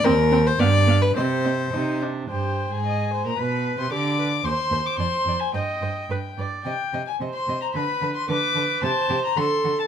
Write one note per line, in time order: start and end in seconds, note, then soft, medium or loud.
0.04 0.53 D#2 medium
0.04 0.13 C4 medium
0.04 0.49 A#4 loud
0.04 0.12 G5 medium
0.32 0.40 C4 medium
0.32 0.40 G5 medium
0.47 0.61 C5 medium
0.59 1.09 G2 medium
0.59 0.67 B3 medium
0.59 1.03 D5 loud
0.59 0.68 F5 medium
0.87 0.95 B3 medium
0.87 0.97 F5 medium
1.02 1.15 B4 medium
1.16 1.67 C3 medium
1.16 1.24 C4 medium
1.16 2.00 C5 medium
1.16 1.25 D#5 medium
1.44 1.53 C4 soft
1.44 1.52 D#5 soft
1.73 2.24 C3 medium
1.73 2.04 D#4 medium
1.73 1.81 D#5 soft
2.02 2.30 D4 soft
2.02 2.10 D#5 soft
2.30 2.69 G2 soft
2.30 2.69 G4 soft
2.30 2.81 C5 soft
2.30 2.73 G5 soft
2.71 3.24 G#2 soft
2.71 3.24 G#4 medium
2.71 3.26 G#5 medium
2.86 3.12 D#5 soft
3.13 3.38 C5 soft
3.25 3.31 A#2 medium
3.25 3.39 A#4 soft
3.25 3.40 A#5 medium
3.38 3.78 B2 medium
3.38 3.93 B4 medium
3.38 3.80 B4 medium
3.38 3.79 B5 medium
3.78 3.91 C3 medium
3.78 3.91 C5 medium
3.78 3.92 C6 medium
3.91 4.44 D3 medium
3.91 4.18 G4 soft
3.91 4.44 D5 medium
3.91 4.46 D6 medium
4.19 4.27 B4 soft
4.44 4.52 D#2 medium
4.44 5.52 C5 medium
4.44 4.54 C5 soft
4.44 4.88 C6 medium
4.71 4.79 D#2 medium
4.71 4.80 C5 medium
4.86 4.98 D6 medium
4.98 5.06 F2 medium
4.98 5.08 D5 soft
4.98 5.42 C6 medium
5.26 5.34 F2 medium
5.26 5.36 D5 soft
5.40 5.53 G#5 medium
5.53 5.61 G2 medium
5.53 5.62 C5 soft
5.53 6.04 D#5 medium
5.53 6.37 G5 medium
5.81 5.89 G2 soft
5.81 5.90 C5 soft
6.09 6.17 G2 soft
6.09 6.19 B4 soft
6.37 6.45 G2 soft
6.37 6.47 B4 soft
6.37 6.66 D5 soft
6.64 6.74 C3 soft
6.64 6.74 D#5 soft
6.64 7.03 G5 medium
6.93 7.01 C3 soft
6.93 7.02 D#5 soft
7.07 7.15 G#5 medium
7.21 7.29 C3 soft
7.21 7.78 C5 soft
7.21 7.29 D#5 soft
7.34 7.61 C6 medium
7.48 7.56 C3 soft
7.48 7.57 D#5 soft
7.62 7.67 A#5 medium
7.74 7.83 D3 medium
7.74 7.84 B4 soft
7.74 8.28 B4 medium
7.74 8.14 B5 medium
8.02 8.10 D3 medium
8.02 8.10 B4 soft
8.16 8.29 C6 medium
8.29 8.37 D3 medium
8.29 8.85 B4 medium
8.29 8.38 B4 medium
8.29 8.82 D6 medium
8.55 8.63 D3 medium
8.55 8.64 B4 soft
8.82 8.90 C3 medium
8.82 8.91 G4 medium
8.82 9.38 C5 medium
8.82 9.23 A5 medium
9.09 9.17 C3 medium
9.09 9.17 G4 medium
9.25 9.39 A#5 medium
9.37 9.45 D3 medium
9.37 9.45 F#4 medium
9.37 9.87 A4 medium
9.37 9.79 C6 medium
9.65 9.73 D3 medium
9.65 9.73 F#4 soft
9.80 9.85 A5 medium